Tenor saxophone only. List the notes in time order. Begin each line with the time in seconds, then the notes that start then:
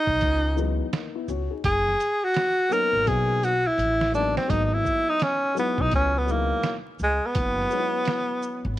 Already playing: D#4
1.66 G#4
2.24 F#4
2.73 A#4
3.08 G#4
3.44 F#4
3.67 E4
4.15 D4
4.37 C4
4.50 D#4
4.65 D#4
4.74 E4
5.09 D#4
5.23 C#4
5.59 B3
5.81 D#4
5.95 C#4
6.18 B3
6.32 A#3
7.03 G#3
7.26 B3